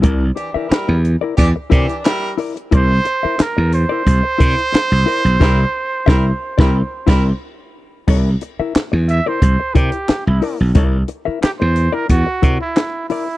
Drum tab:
CC |----------------|----------------|x---------x-----|x---------------|
HH |x-x-x-x-x-xxx-ox|x-x-x-x-x-xxx-ox|----------------|--x-x-x-x-xxx-o-|
CP |----x-------x---|----x-------x---|----------------|----x-------x---|
SD |----o-------o---|----o-------o---|o---o--o--o-----|----o-------o---|
BD |o-------o-o-----|o-------o-o-----|o---o--o--o-----|o-------o-o-----|

CC |----------------|
HH |x-x-x-x-x-x-x-o-|
CP |----x-------x---|
SD |----o-------o---|
BD |o-------o-o-----|